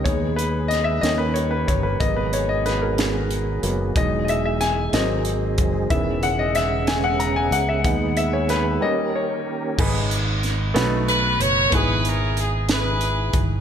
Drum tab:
CC |------|------|------|------|
HH |xxxxxx|xxxxxx|xxxxxx|xxxxxx|
SD |--oo--|--oo--|--oo--|--oo--|
BD |o----o|o-----|o----o|o-----|

CC |------|x-----|------|
HH |xxx---|-xxxxx|xxxxxx|
SD |--o---|--oo--|---o--|
BD |o-----|o-----|o----o|